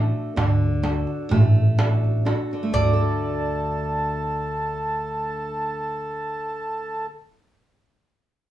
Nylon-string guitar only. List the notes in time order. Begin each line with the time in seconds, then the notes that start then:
Already playing: A3 D4 F#4 A4
0.36 D3
0.83 D4 F#4 A4
1.31 A3
1.78 D4 F#4 A4
2.25 D4 F#4 A4
2.53 D3
2.63 A3
2.73 D4
2.83 F#4
2.93 A4